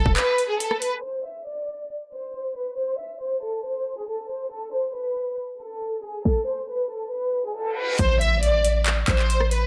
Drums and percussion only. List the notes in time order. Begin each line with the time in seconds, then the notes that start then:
0.06 kick
0.16 clap, closed hi-hat
0.38 closed hi-hat
0.60 closed hi-hat
0.71 cross-stick
0.82 closed hi-hat
1.04 closed hi-hat
1.25 closed hi-hat
1.47 closed hi-hat
1.69 closed hi-hat
1.90 closed hi-hat
2.12 closed hi-hat
2.34 closed hi-hat
2.56 closed hi-hat
2.77 closed hi-hat
2.99 closed hi-hat
3.21 closed hi-hat
3.43 closed hi-hat
3.64 closed hi-hat
3.86 closed hi-hat
3.93 closed hi-hat
4.01 closed hi-hat
4.08 closed hi-hat
4.30 closed hi-hat
4.51 closed hi-hat
4.73 closed hi-hat
4.95 closed hi-hat
5.17 closed hi-hat
5.38 closed hi-hat
5.60 closed hi-hat
5.82 closed hi-hat
6.04 closed hi-hat
6.25 kick, snare
7.99 kick, closed hi-hat
8.21 closed hi-hat
8.43 closed hi-hat
8.65 closed hi-hat
8.86 clap, closed hi-hat
9.08 kick, clap, closed hi-hat
9.19 clap
9.30 closed hi-hat
9.41 cross-stick
9.51 closed hi-hat